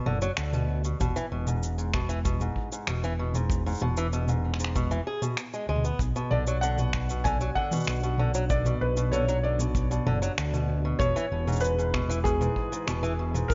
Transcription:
0.06 F#1 D3, mid tom
0.22 F#3, cabasa
0.37 D2 D3, finger snap, cabasa
0.53 B2, mid tom, cabasa
0.84 B2, cabasa
1.00 E1 B2, kick, mid tom, cabasa
1.16 E3, cabasa
1.32 E1 B2
1.47 G#2, mid tom, cabasa
1.63 cabasa
1.78 G#2, cabasa
1.94 B2, finger snap, kick
2.09 E3, cabasa
2.25 B2, kick, cabasa
2.40 G#2, mid tom, cabasa
2.56 kick
2.72 G#2, cabasa
2.87 E1 B2, finger snap, mid tom, cabasa
3.04 E3, cabasa
3.19 B2
3.34 G#2, mid tom, cabasa
3.50 kick, cabasa
3.66 G#2, cabasa
3.69 cabasa
3.72 cabasa
3.74 cabasa
3.77 cabasa
3.79 E1 B2, mid tom, cabasa
3.97 E3, cabasa
4.13 B2, cabasa
4.28 G#2, mid tom, cabasa
4.54 finger snap
4.60 G#2, cabasa
4.64 finger snap
4.75 B2, kick, mid tom, cabasa
4.91 E3, cabasa
5.07 G#4
5.22 B2, mid tom, cabasa
5.37 finger snap, cabasa
5.53 G#3, cabasa
5.69 D2 G#3
5.76 mid tom
5.85 B3, cabasa
5.99 B1 B3 D4 F#4, kick, cabasa
6.16 B2, cabasa
6.31 B1 D3 D5, mid tom
6.47 F#3, cabasa
6.61 D3 F#5, cabasa
6.78 B2, mid tom, cabasa
6.93 finger snap, kick
7.10 B2, cabasa
7.24 D3 G#5, kick, mid tom, cabasa
7.41 F#3, cabasa
7.55 D3 F#5, kick
7.71 B2, mid tom, cabasa
7.76 cabasa
7.80 cabasa
7.84 B1, finger snap, cabasa
7.88 cabasa
7.92 cabasa
7.96 cabasa
7.99 cabasa
8.03 B2, cabasa
8.18 D3, mid tom
8.34 F#3, cabasa
8.50 D3 D5, kick, cabasa
8.65 B2, mid tom, cabasa
8.81 B1 B4
8.97 B2, cabasa
9.12 D3 C#5, mid tom, cabasa
9.28 F#3, cabasa
9.43 D3 D5
9.59 B2, mid tom, cabasa
9.75 kick, cabasa
9.91 B2, cabasa
10.06 F#1 D3, mid tom
10.22 F#3, cabasa
10.38 D2 D3, finger snap, cabasa
10.53 B2, mid tom, cabasa
10.85 B2
10.99 E1 B2 E3 E4 G#4 B4 C#5, kick, mid tom, cabasa
11.16 E3, cabasa
11.31 E1 B2
11.47 G#2, mid tom, cabasa
11.52 cabasa
11.56 cabasa
11.60 B4, cabasa
11.64 cabasa
11.78 G#2, cabasa
11.94 B2, finger snap, kick, mid tom
12.09 E3, cabasa
12.24 B2 G#4, kick, cabasa
12.41 G#2, mid tom, cabasa
12.56 kick
12.72 G#2, cabasa
12.87 E1 B2, finger snap, mid tom, cabasa
13.03 E3, cabasa
13.19 B2
13.34 G#2, mid tom, cabasa
13.48 F#3 C#4 A#4, kick, cabasa

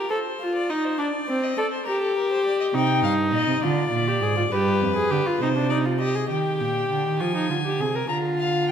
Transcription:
Already playing: A#4
0.10 A4 C5
0.40 F4
0.55 D5
0.69 D#4 D#5
0.84 C5
0.98 D4 D5
1.28 C4
1.43 D#5
1.58 A4 D5
1.71 C5
1.86 G4 A#4
2.02 A4
2.17 A#4
2.32 C5
2.46 D5
2.60 D#5
2.73 C3 D#4 G5
3.02 G2 F5
3.32 A#2 D#5
3.47 C3
3.62 D3 F4 D5
3.92 A#2
4.07 G4
4.21 G#2 G#4
4.37 F4
4.51 G2 G4 B4
4.81 F2
4.96 G#4
5.10 D3 G4
5.26 F4
5.40 C3 D#4 C5
5.56 D4
5.69 D#4 D5
5.85 F4
5.99 G4 D#5
6.15 G#4
6.29 D#3 G4 G5
6.61 A#2
6.90 D3
7.05 D#3
7.20 F3 F4 G#5
7.35 D#4
7.50 D3 F4
7.65 G4
7.79 C3 G#4
7.95 A#4
8.09 D3 F4 A#5
8.38 F5
8.68 G5

